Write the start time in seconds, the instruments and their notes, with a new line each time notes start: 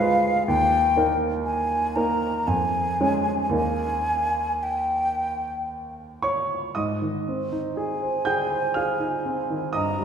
Already playing: flute F5
0.00 grand piano G#3 F4 B4
0.47 grand piano D#2, flute G5
0.96 grand piano A#3 D#4 A#4
1.44 flute G#5
1.96 grand piano A#3 D#4 A#4, flute A#5
2.47 grand piano F2, flute G#5
3.00 grand piano G#3 C#4 C#5
3.49 grand piano D#2 A#3 D#4 A#4
3.55 flute G#5
4.63 flute G5
6.22 grand piano C#5 C#6
6.75 grand piano G#2 D#5 D#6
7.02 grand piano D#3
7.28 grand piano C4
7.52 grand piano D#4
7.77 grand piano G#4, flute G#5
8.02 grand piano C5
8.25 grand piano G#4 G5 G6
8.52 grand piano C5
8.74 grand piano G#4 F5 F6
9.00 grand piano D#4
9.25 grand piano C4
9.50 grand piano D#3
9.73 grand piano G2 D#5 D#6, flute A#5
9.99 grand piano G3